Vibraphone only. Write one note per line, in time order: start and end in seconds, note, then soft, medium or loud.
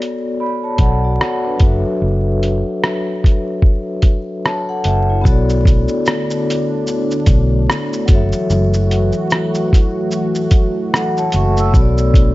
0.00 1.55 B3 medium
0.00 0.35 F#4 medium
0.00 0.36 A4 medium
0.00 0.38 C#5 medium
0.00 0.39 D5 medium
0.40 0.62 D5 medium
0.40 0.62 B5 medium
0.63 0.79 C#5 medium
0.63 0.79 A5 medium
0.80 1.02 A4 medium
0.80 1.02 F#5 medium
1.04 1.20 F#4 medium
1.04 1.19 D5 medium
1.21 1.43 C#5 medium
1.45 1.83 D4 soft
1.45 1.82 B4 medium
1.56 4.78 F#3 medium
1.56 4.39 F#4 medium
1.61 4.40 A4 medium
1.61 4.41 C#5 medium
1.66 4.43 E5 medium
4.45 4.67 C#5 medium
4.45 4.67 A5 medium
4.69 4.85 A4 medium
4.69 4.84 F#5 medium
4.86 5.07 E5 medium
5.09 5.48 E4 medium
5.09 5.28 C#5 medium
5.22 8.03 B3 medium
5.22 8.04 F#4 medium
5.26 8.05 A4 medium
5.26 8.07 C#5 medium
5.31 8.08 D5 medium
8.05 11.27 F#3 medium
8.05 11.28 F#4 medium
8.10 10.89 A4 medium
8.10 10.90 C#5 medium
8.15 10.92 E5 medium
10.95 11.16 A4 medium
10.95 11.16 F#5 medium
11.18 11.34 C#5 medium
11.18 11.33 A5 medium
11.36 11.57 E5 medium
11.36 11.57 C#6 medium
11.60 11.97 E6 medium
11.71 12.35 B3 medium
11.71 12.35 F#4 medium
11.76 12.35 A4 medium
11.76 12.35 C#5 medium
11.81 12.35 D5 medium